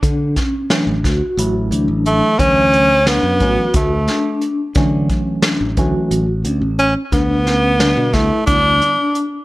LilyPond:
<<
  \new Staff \with { instrumentName = "Vibraphone" } { \time 7/8 \key d \major \tempo 4 = 89 d'8 cis'8 d'8 fis'4 d'4 | cis'8 cis'8 d'8 fis'4 d'4 | d'8 cis'8 d'8 fis'4 cis'4 | d'8 cis'8 d'8 e'4 d'4 | }
  \new Staff \with { instrumentName = "Tenor saxophone" } { \time 7/8 \key d \major r2. a8 | cis'4 b4 a4 r8 | r2. cis'8 | b4. a8 d'4 r8 | }
  \new Staff \with { instrumentName = "Tine electric piano" } { \clef bass \time 7/8 \key d \major r4 <e fis a cis'>8 r8 <e fis a e'>4. | <e fis a cis'>8 r4 <e fis a cis'>8 r4. | <e fis a cis'>4. <e fis a cis'>8 r4. | r4 <d g b d'>8 r8 <d g b d'>8 r4 | }
  \new Staff \with { instrumentName = "Fingered electric bass" } { \clef bass \time 7/8 \key d \major d8 r8. a,,16 d,16 r16 a,,8 d,16 a,,8 r16 | d,4~ d,16 fis,16 a,,16 r16 d,8 r4 | d8 r8. a,,16 d,16 r16 a,,8 d,16 a,,8 r16 | d,4~ d,16 b,16 d,16 r16 d,8 r4 | }
  \new DrumStaff \with { instrumentName = "Drums" } \drummode { \time 7/8 <hh bd>8 <hh bd sn>8 <hh sn>8 <hh bd sn>8 hh8 hh8 hh8 | <hh bd>8 hh8 <hh sn>8 <hh bd>8 <hh bd>8 <hh sn>8 hh8 | <hh bd>8 <hh bd>8 <hh sn>8 <hh bd>8 hh8 hh8 hh8 | <hh bd>8 <hh sn>8 <hh sn>8 <hh bd sn>8 <hh bd>8 hh8 hh8 | }
>>